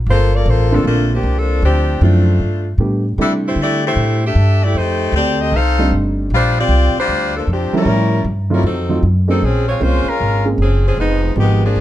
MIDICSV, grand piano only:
0, 0, Header, 1, 2, 480
1, 0, Start_track
1, 0, Tempo, 389358
1, 95, Time_signature, 4, 2, 24, 8
1, 14553, End_track
2, 0, Start_track
2, 0, Title_t, "Grand piano"
2, 0, Program_c, 0, 0
2, 878, Note_on_c, 0, 50, 63
2, 885, Note_on_c, 0, 57, 59
2, 888, Note_on_c, 0, 58, 62
2, 890, Note_on_c, 0, 60, 67
2, 892, Note_on_c, 0, 65, 74
2, 1496, Note_off_c, 0, 50, 0
2, 1499, Note_off_c, 0, 57, 0
2, 1501, Note_off_c, 0, 58, 0
2, 1502, Note_off_c, 0, 60, 0
2, 1503, Note_off_c, 0, 65, 0
2, 2486, Note_on_c, 0, 53, 46
2, 2488, Note_on_c, 0, 57, 46
2, 2493, Note_on_c, 0, 60, 45
2, 2495, Note_on_c, 0, 62, 48
2, 2495, Note_on_c, 0, 64, 53
2, 2773, Note_off_c, 0, 53, 0
2, 2774, Note_off_c, 0, 57, 0
2, 2776, Note_off_c, 0, 60, 0
2, 2777, Note_off_c, 0, 62, 0
2, 2777, Note_off_c, 0, 64, 0
2, 3446, Note_on_c, 0, 55, 51
2, 3449, Note_on_c, 0, 57, 46
2, 3454, Note_on_c, 0, 59, 47
2, 3458, Note_on_c, 0, 62, 45
2, 3459, Note_on_c, 0, 67, 59
2, 3733, Note_off_c, 0, 55, 0
2, 3734, Note_off_c, 0, 57, 0
2, 3736, Note_off_c, 0, 59, 0
2, 3739, Note_off_c, 0, 62, 0
2, 3739, Note_off_c, 0, 67, 0
2, 3922, Note_on_c, 0, 55, 57
2, 3926, Note_on_c, 0, 57, 56
2, 3928, Note_on_c, 0, 60, 58
2, 3935, Note_on_c, 0, 62, 57
2, 3940, Note_on_c, 0, 64, 73
2, 5268, Note_off_c, 0, 55, 0
2, 5270, Note_off_c, 0, 57, 0
2, 5271, Note_off_c, 0, 60, 0
2, 5274, Note_off_c, 0, 62, 0
2, 5277, Note_off_c, 0, 64, 0
2, 7132, Note_on_c, 0, 55, 63
2, 7133, Note_on_c, 0, 57, 57
2, 7142, Note_on_c, 0, 62, 63
2, 7143, Note_on_c, 0, 60, 57
2, 7146, Note_on_c, 0, 63, 67
2, 7742, Note_off_c, 0, 55, 0
2, 7742, Note_off_c, 0, 57, 0
2, 7747, Note_off_c, 0, 60, 0
2, 7747, Note_off_c, 0, 62, 0
2, 7749, Note_off_c, 0, 63, 0
2, 9530, Note_on_c, 0, 55, 77
2, 9533, Note_on_c, 0, 70, 64
2, 9535, Note_on_c, 0, 53, 56
2, 9541, Note_on_c, 0, 61, 57
2, 9542, Note_on_c, 0, 64, 75
2, 10141, Note_off_c, 0, 55, 0
2, 10142, Note_off_c, 0, 70, 0
2, 10143, Note_off_c, 0, 53, 0
2, 10146, Note_off_c, 0, 61, 0
2, 10147, Note_off_c, 0, 64, 0
2, 10480, Note_on_c, 0, 54, 66
2, 10486, Note_on_c, 0, 57, 65
2, 10488, Note_on_c, 0, 60, 56
2, 10490, Note_on_c, 0, 63, 57
2, 10494, Note_on_c, 0, 65, 73
2, 10632, Note_off_c, 0, 54, 0
2, 10635, Note_off_c, 0, 57, 0
2, 10637, Note_off_c, 0, 60, 0
2, 10637, Note_off_c, 0, 63, 0
2, 10639, Note_off_c, 0, 65, 0
2, 10961, Note_on_c, 0, 57, 49
2, 10962, Note_on_c, 0, 54, 60
2, 10963, Note_on_c, 0, 60, 52
2, 10970, Note_on_c, 0, 63, 57
2, 10974, Note_on_c, 0, 65, 54
2, 11113, Note_off_c, 0, 57, 0
2, 11114, Note_off_c, 0, 54, 0
2, 11114, Note_off_c, 0, 60, 0
2, 11117, Note_off_c, 0, 63, 0
2, 11119, Note_off_c, 0, 65, 0
2, 11437, Note_on_c, 0, 56, 65
2, 11442, Note_on_c, 0, 60, 57
2, 11444, Note_on_c, 0, 58, 61
2, 11449, Note_on_c, 0, 61, 55
2, 11454, Note_on_c, 0, 63, 68
2, 11591, Note_off_c, 0, 56, 0
2, 11594, Note_off_c, 0, 60, 0
2, 11595, Note_off_c, 0, 58, 0
2, 11597, Note_off_c, 0, 61, 0
2, 11600, Note_off_c, 0, 63, 0
2, 12077, Note_on_c, 0, 56, 59
2, 12084, Note_on_c, 0, 58, 49
2, 12087, Note_on_c, 0, 60, 48
2, 12094, Note_on_c, 0, 61, 43
2, 12096, Note_on_c, 0, 65, 57
2, 12368, Note_off_c, 0, 56, 0
2, 12371, Note_off_c, 0, 58, 0
2, 12373, Note_off_c, 0, 60, 0
2, 12376, Note_off_c, 0, 61, 0
2, 12377, Note_off_c, 0, 65, 0
2, 12879, Note_on_c, 0, 56, 51
2, 12884, Note_on_c, 0, 58, 46
2, 12886, Note_on_c, 0, 60, 51
2, 12887, Note_on_c, 0, 61, 51
2, 12893, Note_on_c, 0, 68, 61
2, 13033, Note_off_c, 0, 56, 0
2, 13035, Note_off_c, 0, 58, 0
2, 13037, Note_off_c, 0, 60, 0
2, 13037, Note_off_c, 0, 61, 0
2, 13040, Note_off_c, 0, 68, 0
2, 14005, Note_on_c, 0, 53, 51
2, 14012, Note_on_c, 0, 56, 47
2, 14014, Note_on_c, 0, 59, 51
2, 14016, Note_on_c, 0, 63, 47
2, 14019, Note_on_c, 0, 67, 61
2, 14293, Note_off_c, 0, 53, 0
2, 14297, Note_off_c, 0, 56, 0
2, 14298, Note_off_c, 0, 59, 0
2, 14299, Note_off_c, 0, 63, 0
2, 14300, Note_off_c, 0, 67, 0
2, 14553, End_track
0, 0, End_of_file